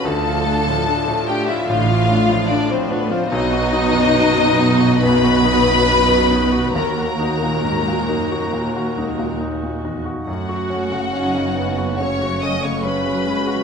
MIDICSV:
0, 0, Header, 1, 7, 480
1, 0, Start_track
1, 0, Tempo, 817439
1, 26, Time_signature, 4, 2, 24, 8
1, 2426, Tempo, 878477
1, 5786, Tempo, 849858
1, 7680, End_track
2, 0, Start_track
2, 0, Title_t, "Violin section"
2, 0, Program_c, 0, 48
2, 28, Note_on_c, 0, 81, 87
2, 746, Note_on_c, 0, 79, 80
2, 750, Note_off_c, 0, 81, 0
2, 864, Note_on_c, 0, 76, 76
2, 866, Note_off_c, 0, 79, 0
2, 972, Note_on_c, 0, 77, 91
2, 983, Note_off_c, 0, 76, 0
2, 1459, Note_on_c, 0, 74, 86
2, 1461, Note_off_c, 0, 77, 0
2, 1583, Note_off_c, 0, 74, 0
2, 1593, Note_on_c, 0, 72, 75
2, 1699, Note_on_c, 0, 71, 80
2, 1709, Note_off_c, 0, 72, 0
2, 1820, Note_off_c, 0, 71, 0
2, 1832, Note_on_c, 0, 72, 80
2, 1937, Note_on_c, 0, 75, 108
2, 1947, Note_off_c, 0, 72, 0
2, 2886, Note_off_c, 0, 75, 0
2, 2905, Note_on_c, 0, 83, 104
2, 3857, Note_on_c, 0, 82, 75
2, 3862, Note_off_c, 0, 83, 0
2, 5286, Note_off_c, 0, 82, 0
2, 5786, Note_on_c, 0, 78, 75
2, 6728, Note_off_c, 0, 78, 0
2, 6747, Note_on_c, 0, 85, 71
2, 6986, Note_off_c, 0, 85, 0
2, 6996, Note_on_c, 0, 87, 72
2, 7115, Note_off_c, 0, 87, 0
2, 7117, Note_on_c, 0, 85, 65
2, 7229, Note_on_c, 0, 83, 74
2, 7234, Note_off_c, 0, 85, 0
2, 7680, Note_off_c, 0, 83, 0
2, 7680, End_track
3, 0, Start_track
3, 0, Title_t, "Violin section"
3, 0, Program_c, 1, 48
3, 26, Note_on_c, 1, 69, 75
3, 744, Note_on_c, 1, 67, 70
3, 749, Note_off_c, 1, 69, 0
3, 862, Note_on_c, 1, 64, 68
3, 863, Note_off_c, 1, 67, 0
3, 981, Note_on_c, 1, 65, 82
3, 984, Note_off_c, 1, 64, 0
3, 1455, Note_off_c, 1, 65, 0
3, 1464, Note_on_c, 1, 62, 73
3, 1580, Note_on_c, 1, 60, 67
3, 1585, Note_off_c, 1, 62, 0
3, 1700, Note_on_c, 1, 59, 72
3, 1702, Note_off_c, 1, 60, 0
3, 1816, Note_on_c, 1, 60, 67
3, 1821, Note_off_c, 1, 59, 0
3, 1929, Note_on_c, 1, 63, 88
3, 1938, Note_off_c, 1, 60, 0
3, 2883, Note_off_c, 1, 63, 0
3, 2909, Note_on_c, 1, 71, 100
3, 3864, Note_off_c, 1, 71, 0
3, 3864, Note_on_c, 1, 70, 68
3, 5290, Note_off_c, 1, 70, 0
3, 5785, Note_on_c, 1, 66, 62
3, 6728, Note_off_c, 1, 66, 0
3, 6747, Note_on_c, 1, 73, 63
3, 6987, Note_on_c, 1, 75, 61
3, 6990, Note_off_c, 1, 73, 0
3, 7110, Note_off_c, 1, 75, 0
3, 7111, Note_on_c, 1, 73, 55
3, 7231, Note_off_c, 1, 73, 0
3, 7232, Note_on_c, 1, 71, 64
3, 7680, Note_off_c, 1, 71, 0
3, 7680, End_track
4, 0, Start_track
4, 0, Title_t, "Grand piano"
4, 0, Program_c, 2, 0
4, 0, Control_c, 2, 64, 127
4, 30, Note_on_c, 2, 38, 53
4, 38, Control_c, 2, 64, 0
4, 131, Control_c, 2, 64, 127
4, 153, Note_on_c, 2, 65, 46
4, 275, Note_on_c, 2, 62, 43
4, 344, Note_off_c, 2, 65, 0
4, 395, Note_on_c, 2, 45, 40
4, 465, Note_off_c, 2, 62, 0
4, 514, Note_on_c, 2, 62, 47
4, 584, Note_off_c, 2, 45, 0
4, 634, Note_on_c, 2, 45, 45
4, 703, Note_off_c, 2, 62, 0
4, 757, Note_on_c, 2, 62, 46
4, 822, Note_off_c, 2, 45, 0
4, 873, Note_on_c, 2, 65, 48
4, 944, Note_off_c, 2, 62, 0
4, 965, Note_off_c, 2, 38, 0
4, 997, Note_on_c, 2, 45, 52
4, 1062, Note_off_c, 2, 65, 0
4, 1112, Note_on_c, 2, 65, 46
4, 1184, Note_off_c, 2, 45, 0
4, 1228, Note_on_c, 2, 62, 49
4, 1302, Note_off_c, 2, 65, 0
4, 1347, Note_on_c, 2, 45, 47
4, 1420, Note_off_c, 2, 62, 0
4, 1472, Note_on_c, 2, 62, 51
4, 1539, Note_off_c, 2, 45, 0
4, 1594, Note_on_c, 2, 45, 44
4, 1660, Note_off_c, 2, 62, 0
4, 1707, Note_on_c, 2, 62, 50
4, 1780, Note_off_c, 2, 45, 0
4, 1828, Note_on_c, 2, 65, 51
4, 1896, Note_off_c, 2, 62, 0
4, 1944, Note_off_c, 2, 65, 0
4, 1949, Note_on_c, 2, 35, 68
4, 1954, Control_c, 2, 64, 0
4, 2034, Control_c, 2, 64, 127
4, 2072, Note_on_c, 2, 66, 50
4, 2187, Note_on_c, 2, 63, 50
4, 2260, Note_off_c, 2, 66, 0
4, 2307, Note_on_c, 2, 42, 46
4, 2380, Note_off_c, 2, 63, 0
4, 2431, Note_on_c, 2, 63, 53
4, 2498, Note_off_c, 2, 42, 0
4, 2546, Note_on_c, 2, 42, 51
4, 2618, Note_off_c, 2, 63, 0
4, 2669, Note_on_c, 2, 63, 48
4, 2739, Note_off_c, 2, 42, 0
4, 2793, Note_on_c, 2, 66, 46
4, 2862, Note_off_c, 2, 63, 0
4, 2888, Note_off_c, 2, 35, 0
4, 2917, Note_on_c, 2, 42, 53
4, 2982, Note_off_c, 2, 66, 0
4, 3031, Note_on_c, 2, 66, 47
4, 3102, Note_off_c, 2, 42, 0
4, 3143, Note_on_c, 2, 63, 48
4, 3216, Note_off_c, 2, 66, 0
4, 3262, Note_on_c, 2, 42, 42
4, 3331, Note_off_c, 2, 63, 0
4, 3381, Note_on_c, 2, 63, 45
4, 3451, Note_off_c, 2, 42, 0
4, 3492, Note_on_c, 2, 42, 38
4, 3571, Note_off_c, 2, 63, 0
4, 3609, Note_on_c, 2, 63, 41
4, 3689, Note_off_c, 2, 42, 0
4, 3730, Note_on_c, 2, 66, 39
4, 3809, Note_off_c, 2, 63, 0
4, 3858, Note_off_c, 2, 66, 0
4, 3859, Note_on_c, 2, 39, 48
4, 3874, Control_c, 2, 64, 0
4, 3981, Control_c, 2, 64, 127
4, 3981, Note_on_c, 2, 66, 37
4, 4100, Note_on_c, 2, 63, 37
4, 4177, Note_off_c, 2, 66, 0
4, 4223, Note_on_c, 2, 46, 34
4, 4297, Note_off_c, 2, 63, 0
4, 4347, Note_on_c, 2, 63, 34
4, 4419, Note_off_c, 2, 46, 0
4, 4474, Note_on_c, 2, 46, 34
4, 4541, Note_off_c, 2, 63, 0
4, 4589, Note_on_c, 2, 63, 34
4, 4666, Note_off_c, 2, 46, 0
4, 4712, Note_on_c, 2, 66, 33
4, 4784, Note_off_c, 2, 63, 0
4, 4809, Note_off_c, 2, 39, 0
4, 4831, Note_on_c, 2, 46, 38
4, 4906, Note_off_c, 2, 66, 0
4, 4954, Note_on_c, 2, 66, 33
4, 5024, Note_off_c, 2, 46, 0
4, 5075, Note_on_c, 2, 63, 34
4, 5145, Note_off_c, 2, 66, 0
4, 5192, Note_on_c, 2, 46, 32
4, 5265, Note_off_c, 2, 63, 0
4, 5309, Note_on_c, 2, 63, 35
4, 5382, Note_off_c, 2, 46, 0
4, 5432, Note_on_c, 2, 46, 28
4, 5501, Note_off_c, 2, 63, 0
4, 5550, Note_on_c, 2, 63, 33
4, 5622, Note_off_c, 2, 46, 0
4, 5663, Note_on_c, 2, 66, 30
4, 5739, Note_off_c, 2, 63, 0
4, 5782, Note_on_c, 2, 42, 44
4, 5783, Note_off_c, 2, 66, 0
4, 5795, Control_c, 2, 64, 0
4, 5904, Note_on_c, 2, 66, 35
4, 5905, Control_c, 2, 64, 127
4, 6022, Note_on_c, 2, 61, 37
4, 6099, Note_off_c, 2, 66, 0
4, 6145, Note_on_c, 2, 49, 32
4, 6218, Note_off_c, 2, 61, 0
4, 6266, Note_on_c, 2, 61, 34
4, 6340, Note_off_c, 2, 49, 0
4, 6386, Note_on_c, 2, 49, 36
4, 6460, Note_off_c, 2, 61, 0
4, 6506, Note_on_c, 2, 61, 35
4, 6580, Note_off_c, 2, 49, 0
4, 6634, Note_on_c, 2, 66, 35
4, 6700, Note_off_c, 2, 61, 0
4, 6726, Note_off_c, 2, 42, 0
4, 6756, Note_on_c, 2, 49, 41
4, 6825, Note_off_c, 2, 66, 0
4, 6878, Note_on_c, 2, 66, 36
4, 6947, Note_off_c, 2, 49, 0
4, 7001, Note_on_c, 2, 61, 39
4, 7068, Note_off_c, 2, 66, 0
4, 7120, Note_on_c, 2, 49, 36
4, 7189, Note_off_c, 2, 61, 0
4, 7236, Note_on_c, 2, 61, 40
4, 7307, Note_off_c, 2, 49, 0
4, 7356, Note_on_c, 2, 49, 35
4, 7424, Note_off_c, 2, 61, 0
4, 7473, Note_on_c, 2, 61, 41
4, 7542, Note_off_c, 2, 49, 0
4, 7587, Note_on_c, 2, 66, 39
4, 7659, Note_off_c, 2, 61, 0
4, 7680, Note_off_c, 2, 66, 0
4, 7680, End_track
5, 0, Start_track
5, 0, Title_t, "Viola section"
5, 0, Program_c, 3, 48
5, 18, Note_on_c, 3, 50, 55
5, 21, Note_on_c, 3, 65, 53
5, 135, Note_off_c, 3, 50, 0
5, 145, Note_on_c, 3, 53, 50
5, 261, Note_on_c, 3, 57, 51
5, 268, Note_off_c, 3, 53, 0
5, 386, Note_off_c, 3, 57, 0
5, 387, Note_on_c, 3, 53, 52
5, 506, Note_on_c, 3, 50, 55
5, 508, Note_off_c, 3, 53, 0
5, 627, Note_off_c, 3, 50, 0
5, 629, Note_on_c, 3, 53, 55
5, 740, Note_on_c, 3, 57, 51
5, 748, Note_off_c, 3, 53, 0
5, 863, Note_off_c, 3, 57, 0
5, 867, Note_on_c, 3, 53, 47
5, 987, Note_off_c, 3, 53, 0
5, 990, Note_on_c, 3, 50, 59
5, 1100, Note_off_c, 3, 50, 0
5, 1108, Note_on_c, 3, 53, 55
5, 1226, Note_on_c, 3, 57, 55
5, 1228, Note_off_c, 3, 53, 0
5, 1344, Note_on_c, 3, 53, 58
5, 1347, Note_off_c, 3, 57, 0
5, 1466, Note_off_c, 3, 53, 0
5, 1468, Note_on_c, 3, 50, 58
5, 1587, Note_off_c, 3, 50, 0
5, 1591, Note_on_c, 3, 53, 57
5, 1707, Note_on_c, 3, 57, 63
5, 1708, Note_off_c, 3, 53, 0
5, 1823, Note_on_c, 3, 53, 61
5, 1824, Note_off_c, 3, 57, 0
5, 1916, Note_off_c, 3, 65, 0
5, 1942, Note_off_c, 3, 53, 0
5, 1943, Note_on_c, 3, 59, 70
5, 1947, Note_on_c, 3, 66, 73
5, 2886, Note_off_c, 3, 59, 0
5, 2888, Note_off_c, 3, 66, 0
5, 2904, Note_on_c, 3, 59, 67
5, 2904, Note_on_c, 3, 66, 67
5, 3842, Note_off_c, 3, 59, 0
5, 3842, Note_off_c, 3, 66, 0
5, 3864, Note_on_c, 3, 58, 54
5, 3865, Note_on_c, 3, 66, 51
5, 5654, Note_off_c, 3, 66, 0
5, 5675, Note_off_c, 3, 58, 0
5, 5781, Note_on_c, 3, 66, 44
5, 5783, Note_on_c, 3, 57, 44
5, 6244, Note_off_c, 3, 66, 0
5, 6245, Note_off_c, 3, 57, 0
5, 6272, Note_on_c, 3, 63, 46
5, 6274, Note_on_c, 3, 61, 52
5, 6507, Note_on_c, 3, 59, 48
5, 6513, Note_off_c, 3, 61, 0
5, 6743, Note_off_c, 3, 63, 0
5, 6744, Note_off_c, 3, 59, 0
5, 6750, Note_on_c, 3, 57, 46
5, 6751, Note_on_c, 3, 61, 46
5, 7230, Note_on_c, 3, 54, 52
5, 7230, Note_on_c, 3, 66, 45
5, 7231, Note_off_c, 3, 57, 0
5, 7232, Note_off_c, 3, 61, 0
5, 7468, Note_off_c, 3, 54, 0
5, 7470, Note_on_c, 3, 56, 57
5, 7680, Note_off_c, 3, 56, 0
5, 7680, Note_off_c, 3, 66, 0
5, 7680, End_track
6, 0, Start_track
6, 0, Title_t, "Cello section"
6, 0, Program_c, 4, 48
6, 21, Note_on_c, 4, 50, 59
6, 427, Note_off_c, 4, 50, 0
6, 991, Note_on_c, 4, 45, 71
6, 1390, Note_off_c, 4, 45, 0
6, 1942, Note_on_c, 4, 47, 74
6, 3841, Note_off_c, 4, 47, 0
6, 3860, Note_on_c, 4, 39, 59
6, 4299, Note_off_c, 4, 39, 0
6, 4348, Note_on_c, 4, 44, 61
6, 4573, Note_off_c, 4, 44, 0
6, 4597, Note_on_c, 4, 42, 51
6, 4834, Note_on_c, 4, 39, 48
6, 4836, Note_off_c, 4, 42, 0
6, 5074, Note_off_c, 4, 39, 0
6, 5076, Note_on_c, 4, 37, 48
6, 5308, Note_on_c, 4, 39, 50
6, 5312, Note_off_c, 4, 37, 0
6, 5548, Note_off_c, 4, 39, 0
6, 5552, Note_on_c, 4, 40, 44
6, 5786, Note_on_c, 4, 42, 50
6, 5787, Note_off_c, 4, 40, 0
6, 7680, Note_off_c, 4, 42, 0
6, 7680, End_track
7, 0, Start_track
7, 0, Title_t, "Double bass section"
7, 0, Program_c, 5, 48
7, 19, Note_on_c, 5, 38, 64
7, 426, Note_off_c, 5, 38, 0
7, 982, Note_on_c, 5, 33, 69
7, 1385, Note_off_c, 5, 33, 0
7, 1939, Note_on_c, 5, 35, 71
7, 3840, Note_off_c, 5, 35, 0
7, 3872, Note_on_c, 5, 39, 58
7, 5680, Note_off_c, 5, 39, 0
7, 5782, Note_on_c, 5, 30, 49
7, 7680, Note_off_c, 5, 30, 0
7, 7680, End_track
0, 0, End_of_file